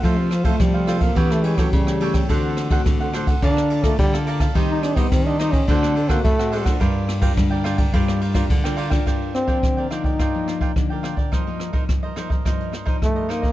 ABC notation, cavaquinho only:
X:1
M:4/4
L:1/16
Q:1/4=106
K:Gm
V:1 name="Cavaquinho"
[FAcf]3 [FAcf] z [Acf] [FAcf] [Acf] [GA^cg]2 [GAcg] [GAcg] z [Acg] [GAcg] [Acg] | [DAc^f]3 [DAcf] z [Acf] [DAcf] [Acf] [Bd=fa]2 [Bdfa] [Bdfa] z [dfa] [Bdfa] [dfa] | [EGce]3 [EGce] z [Gce] [EGce] [Gce] [DAc^f]2 [DAcf] [DAcf] z [Acf] [DAcf] [Acf] | [FBdg]3 [FBdg] z [Bdg] [FBdg] [Bdg] [FBdg]2 [FBdg] [FBdg] z [Bdg] [FBdg] [Bdg] |
[FBdg]3 [FBdg] z [Bdg] [FBdg] [Bdg] [FBdg]2 [FBdg] [FBdg] z [Bdg] [FBdg] [Bdg] | [EBce]3 [EBce] z [Bce] [EBce] [Bce] [EBce]2 [EBce] [EBce] z [Bce] [EBce] [Bce] |]